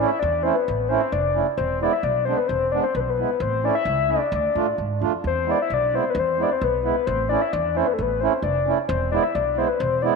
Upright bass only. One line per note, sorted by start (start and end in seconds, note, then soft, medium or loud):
0.23 0.50 E2 medium
0.68 0.95 A1 medium
1.12 1.40 F1 medium
1.58 1.85 E1 medium
2.03 2.31 B1 medium
2.49 2.77 E1 medium
2.95 3.22 B1 medium
3.40 3.68 A1 medium
3.85 4.13 C#2 medium
4.32 4.46 D2 loud
4.55 4.76 A2 medium
4.78 4.99 G#2 medium
5.01 5.22 F2 medium
5.24 5.51 E2 medium
5.70 5.97 B1 medium
6.15 6.42 E2 loud
6.61 6.89 B1 medium
7.07 7.34 A1 loud
7.53 7.80 E2 loud
7.99 8.26 A1 medium
8.42 8.70 F1 medium
8.89 9.16 E1 loud
9.35 9.62 B1 medium
9.80 10.07 E1 loud